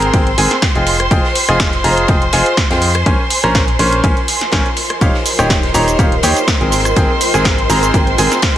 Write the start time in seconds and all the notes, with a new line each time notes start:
Already playing: G#1 C4 G#4 A#4 C5 G5 A#5 C6
0.02 closed hi-hat
0.13 G#1 C4 G#4 A#4 G5, kick, closed hi-hat, ride
0.27 closed hi-hat
0.38 G#1 C4 G#4 A#4 G#5, open hi-hat, ride
0.51 snare, closed hi-hat
0.62 kick, snare, closed hi-hat, ride
0.75 F1 F4 G#4 D#5 G5, closed hi-hat
0.86 open hi-hat, ride
1.00 cross-stick, closed hi-hat
1.11 F1 F4 G#4 D#5 G5, kick, closed hi-hat, ride
1.24 snare
1.35 G#5, open hi-hat, ride
1.48 F1 F4 G#4 D#5 G#5, cross-stick, snare, closed hi-hat
1.60 kick, snare, closed hi-hat, ride
1.73 snare, closed hi-hat
1.84 F1 F4 G#4 D#5 A#5, open hi-hat, ride
1.97 closed hi-hat
2.08 F1 F4 G#4 D#5 G5, kick, closed hi-hat, ride
2.22 closed hi-hat
2.32 F1 F4 G#4 D#5 G#5, snare, open hi-hat, ride
2.46 closed hi-hat
2.57 kick, snare, closed hi-hat, ride
2.71 F2 F4 G#4 D#5 G5, snare, closed hi-hat, ride
2.82 open hi-hat
2.94 cross-stick, closed hi-hat, ride
3.06 A#1 C#4 F4 A#4 C5 G#5, kick, closed hi-hat, ride
3.30 A#4, open hi-hat, ride
3.44 A#1 C#4 A#4 C5 D#5 A#5, cross-stick, snare, closed hi-hat
3.55 kick, snare, closed hi-hat, ride
3.68 closed hi-hat
3.79 A#1 C#4 A#4 C5 C6, snare, open hi-hat, ride
3.92 closed hi-hat
4.04 A#1 C#4 A#4 C5 G#5, kick, closed hi-hat, ride
4.17 closed hi-hat
4.28 open hi-hat, ride
4.41 snare, closed hi-hat
4.52 A#1 C#4 A#4 C5 G#5, kick, snare, closed hi-hat, ride
4.66 closed hi-hat
4.76 open hi-hat, ride
4.90 cross-stick, closed hi-hat
5.01 D#1 D#4 G4 C5 C#5 F5 C6, kick, closed hi-hat, ride, shaker
5.14 snare
5.25 open hi-hat, ride, shaker
5.39 D#1 D#4 G4 C#5 G5, cross-stick, snare, shaker
5.50 kick, snare, closed hi-hat, ride, shaker
5.63 snare, closed hi-hat
5.74 D#1 D#4 G4 C#5 A#5, open hi-hat, ride, shaker
5.78 G5
5.88 closed hi-hat, shaker
5.99 D#1 D#4 G4 C#5 F5, kick, closed hi-hat, ride, shaker
6.12 closed hi-hat
6.23 D#2 D#4 G4 C#5 G5, snare, open hi-hat, ride, shaker
6.36 closed hi-hat, ride, shaker
6.48 kick, snare, closed hi-hat, ride, shaker
6.61 G#1 C4 G#4 A#4 G5, closed hi-hat
6.72 open hi-hat, ride, shaker
6.85 cross-stick, closed hi-hat, ride, shaker
6.96 G#1 C4 G#4 A#4 G5, kick, closed hi-hat, ride, shaker
7.21 open hi-hat, ride, shaker
7.34 G#1 C4 G#4 A#4 G#5, cross-stick, snare, closed hi-hat, shaker
7.45 kick, snare, closed hi-hat, ride, shaker
7.58 closed hi-hat
7.70 G#1 C4 G#4 A#4 A#5, snare, open hi-hat, ride, shaker
7.83 closed hi-hat, shaker
7.94 G#1 C4 G#4 A#4 G5, kick, closed hi-hat, ride, shaker
8.07 closed hi-hat
8.18 G#1 C4 G#4 A#4 G#5, open hi-hat, ride, shaker
8.32 snare, closed hi-hat, shaker
8.42 kick, snare, closed hi-hat, ride, shaker